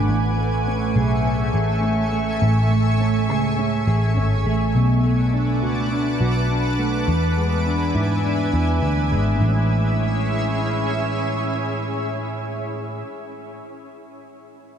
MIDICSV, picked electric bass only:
0, 0, Header, 1, 2, 480
1, 0, Start_track
1, 0, Key_signature, 3, "major"
1, 0, Tempo, 582524
1, 72, Time_signature, 4, 2, 24, 8
1, 12182, End_track
2, 0, Start_track
2, 0, Title_t, "Picked electric bass"
2, 0, Program_c, 0, 34
2, 71, Note_on_c, 0, 33, 81
2, 758, Note_off_c, 0, 33, 0
2, 791, Note_on_c, 0, 35, 85
2, 1247, Note_off_c, 0, 35, 0
2, 1269, Note_on_c, 0, 33, 78
2, 1957, Note_off_c, 0, 33, 0
2, 1994, Note_on_c, 0, 33, 84
2, 2715, Note_off_c, 0, 33, 0
2, 2715, Note_on_c, 0, 37, 84
2, 3169, Note_off_c, 0, 37, 0
2, 3193, Note_on_c, 0, 33, 85
2, 3420, Note_off_c, 0, 33, 0
2, 3435, Note_on_c, 0, 32, 72
2, 3661, Note_off_c, 0, 32, 0
2, 3672, Note_on_c, 0, 33, 74
2, 3900, Note_off_c, 0, 33, 0
2, 3913, Note_on_c, 0, 35, 85
2, 4635, Note_off_c, 0, 35, 0
2, 4635, Note_on_c, 0, 37, 80
2, 5089, Note_off_c, 0, 37, 0
2, 5114, Note_on_c, 0, 35, 75
2, 5800, Note_off_c, 0, 35, 0
2, 5833, Note_on_c, 0, 40, 81
2, 6519, Note_off_c, 0, 40, 0
2, 6551, Note_on_c, 0, 44, 76
2, 7007, Note_off_c, 0, 44, 0
2, 7034, Note_on_c, 0, 40, 79
2, 7261, Note_off_c, 0, 40, 0
2, 7272, Note_on_c, 0, 38, 81
2, 7515, Note_on_c, 0, 32, 72
2, 7528, Note_off_c, 0, 38, 0
2, 7741, Note_off_c, 0, 32, 0
2, 7753, Note_on_c, 0, 33, 68
2, 10732, Note_off_c, 0, 33, 0
2, 12182, End_track
0, 0, End_of_file